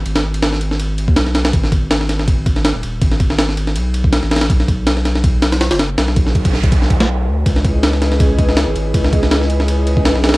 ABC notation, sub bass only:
X:1
M:4/4
L:1/16
Q:"Swing 16ths" 1/4=162
K:C#m
V:1 name="Sub bass" clef=bass
G,,,8- G,,,3 D,, B,,,4 | G,,,12- G,,, D,,, D,,,2 | G,,,8 B,,,4- B,,, A,,,3 | B,,,12- B,,, F,,, F,,,2 |
B,,,12- B,,,2 =D,,2 | C,,12- C,, G,,, G,,,2 | C,,12- C,, B,,,3 |]